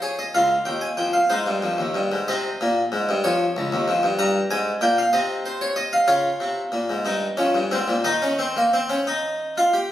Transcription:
Already playing: F2
0.02 G#4 C#5
0.19 D#5
0.35 C#2 F4 F5
0.65 D#2 G5
0.81 G#5
0.97 F2 G5
1.13 F5
1.30 G#2 D#4 C5
1.46 G2
1.62 F2
1.78 D#2
1.94 G2
2.12 G#2
2.28 C3 D#5
2.61 A#2
2.92 G#2
3.09 G2
3.24 F2 C#5
3.57 C#2
3.72 D#2
3.88 F2
4.03 G2
4.19 G2 A#5
4.51 G#2 G#5
4.81 A#2 G5
4.98 F5
5.13 C3 D#5
5.46 C5
5.61 C#5
5.76 D#5
5.93 F5
6.08 C#3 F4 C#5
6.40 C3
6.72 A#2
6.90 G#2
7.05 G2 D#4
7.37 F2 C#4
7.54 G2
7.71 G#2 C4
7.88 A#2
8.05 D#3 D#4 D#5
8.22 C#4
8.39 C4
8.57 A#3
8.73 C4
8.90 C#4
9.07 D#4
9.58 F4
9.73 G4

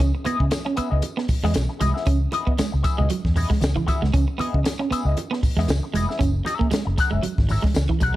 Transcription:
0.00 C#2 C#4, kick, closed hi-hat, tambourine
0.15 muted clean electric guitar stroke
0.24 B3 E4 G#4 D#5, muted fingered electric bass stroke, closed hi-hat, tambourine, muted conga
0.40 C#3, kick
0.51 muted clean electric guitar stroke, snare, closed hi-hat, tambourine, high conga
0.65 C#4, muted clean electric guitar stroke
0.76 B3 E4 G#4 E5, muted fingered electric bass stroke, closed hi-hat, tambourine
0.91 C#2 B3 E4 G#4 D#5
1.02 muted clean electric guitar stroke, closed hi-hat, tambourine, muted conga
1.17 B3, muted clean electric guitar stroke, snare
1.28 muted clean electric guitar stroke, muted fingered electric bass stroke, kick, open hi-hat, tambourine, low conga
1.43 E2 G#3 B3 E4 G#4 D#5, snare
1.53 B1, muted clean electric guitar stroke, snare, closed hi-hat, tambourine, high conga
1.69 muted clean electric guitar stroke
1.79 C2 G#3 B3 E4 G#4 D#5, closed hi-hat, tambourine, high conga
1.94 B3 E4 G#4 E5, snare
2.06 C#2 C#4, kick, closed hi-hat, tambourine, muted conga
2.32 B3 E4 G#4 D#5, muted clean electric guitar stroke, closed hi-hat, tambourine, muted conga
2.47 B3, muted fingered electric bass stroke, kick
2.58 G#3, muted clean electric guitar stroke, muted fingered electric bass stroke, snare, closed hi-hat, tambourine, high conga
2.72 C#2, muted clean electric guitar stroke
2.83 B3 E4 G#4 E5, muted clean electric guitar stroke, kick, closed hi-hat, tambourine
2.98 C#2 G#3 B3 E4 G#4 D#5, low conga
3.09 F#3, muted clean electric guitar stroke, closed hi-hat, tambourine, muted conga
3.25 E2, kick, snare
3.35 B3 E4 G#4 D#5, muted clean electric guitar stroke, open hi-hat, tambourine, muted conga, low conga
3.50 G#3, muted clean electric guitar stroke, kick, snare
3.61 C#2, muted clean electric guitar stroke, snare, closed hi-hat, tambourine, high conga
3.76 E3, muted clean electric guitar stroke, kick
3.87 B3 E4 G#4 E5, muted clean electric guitar stroke, kick, closed hi-hat, tambourine, high conga
4.02 C#2 G#3, muted clean electric guitar stroke, snare
4.14 C#2 C#4, kick, closed hi-hat, tambourine, muted conga
4.28 muted clean electric guitar stroke
4.38 B3 E4 G#4 D#5, muted fingered electric bass stroke, closed hi-hat, muted conga
4.54 C#3, kick
4.65 muted clean electric guitar stroke, snare, closed hi-hat, tambourine, high conga
4.79 C#4, muted clean electric guitar stroke
4.91 B3 E4 G#4 E5, muted fingered electric bass stroke, closed hi-hat, tambourine
5.05 C#2 B3 E4 G#4 D#5
5.17 muted clean electric guitar stroke, closed hi-hat, tambourine, muted conga
5.31 B3, muted clean electric guitar stroke, snare
5.43 muted clean electric guitar stroke, muted fingered electric bass stroke, kick, open hi-hat, tambourine, low conga
5.57 E2 G#3 B3 E4 G#4 D#5, snare
5.68 C#2, muted clean electric guitar stroke, snare, closed hi-hat, tambourine, high conga
5.83 muted clean electric guitar stroke
5.94 F1 G#3 B3 E4 G#4 D#5, closed hi-hat, tambourine, high conga
6.09 B3 E4 G#4 E5, snare
6.19 F#1 C#4, kick, closed hi-hat, tambourine, muted conga
6.44 C#4 G#4 A#4 E5, muted clean electric guitar stroke, closed hi-hat, tambourine, muted conga
6.59 A#3, muted fingered electric bass stroke, kick
6.71 G#3, muted fingered electric bass stroke, muted clean electric guitar stroke, snare, closed hi-hat, tambourine, high conga
6.85 F#1, muted clean electric guitar stroke
6.98 C#4 G#4 A#4 F#5, muted clean electric guitar stroke, kick, closed hi-hat, tambourine
7.11 F#1 G#3 C#4 G#4 A#4 E5
7.23 F#3, muted clean electric guitar stroke, closed hi-hat, tambourine, muted conga
7.38 G#1, kick, snare
7.49 C#4 G#4 A#4 E5, muted clean electric guitar stroke, open hi-hat, tambourine, muted conga, low conga
7.62 G#3, muted clean electric guitar stroke, kick, snare
7.74 C#2, muted clean electric guitar stroke, snare, closed hi-hat, tambourine, high conga
7.89 E3, muted clean electric guitar stroke, kick
8.00 B1 C#4 G#4 A#4 F#5, muted clean electric guitar stroke, kick, closed hi-hat, tambourine, high conga

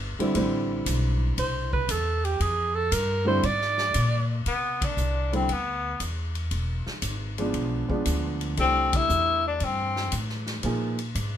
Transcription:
Already playing: G1
0.19 D3 G3 C4 E4, muted upright bass stroke, ride
0.35 A1 D3 G3 C4 E4, kick, ride
0.86 B1, kick, hi-hat pedal, ride
1.38 C2 C5, kick, ride
1.73 B4, kick
1.89 E2 A4, kick, hi-hat pedal, ride
2.25 G4, ride
2.40 F2 G#4, kick, ride
2.75 A4
2.92 G2 A#4, kick, hi-hat pedal, ride
3.25 D3 G3 C4 E4 C5
3.43 G#2 D5, kick, ride
3.61 snare
3.78 snare
3.94 A#2, kick, hi-hat pedal, ride
4.46 C3 B3, kick, ride
4.82 D4, kick, ride
4.97 C2, hi-hat pedal
5.32 D3 G3 C4 E4, ride
5.49 D2 B3, kick, ride
6.00 E2, kick, hi-hat pedal, ride
6.35 ride
6.51 E1, kick, ride
6.86 muted upright bass stroke, snare
7.02 G#1, kick, hi-hat pedal, ride
7.38 F3 G#3 B3 D4, ride
7.54 B1, kick, ride
7.89 F3 G#3 B3 D4, muted upright bass stroke, kick
8.05 D2, kick, hi-hat pedal, ride
8.41 ride
8.57 C2 E3 A3 C4 D4 G4, kick, ride
8.93 E4, kick, ride
9.09 E2, hi-hat pedal
9.47 D4
9.60 G2 C4, kick, ride
9.96 snare
10.12 A2, kick, hi-hat pedal, ride
10.29 snare
10.46 snare, ride
10.63 A#2 F3 A#3 D#4 G#4, kick, ride
10.99 ride
11.15 G#2, kick, hi-hat pedal, ride

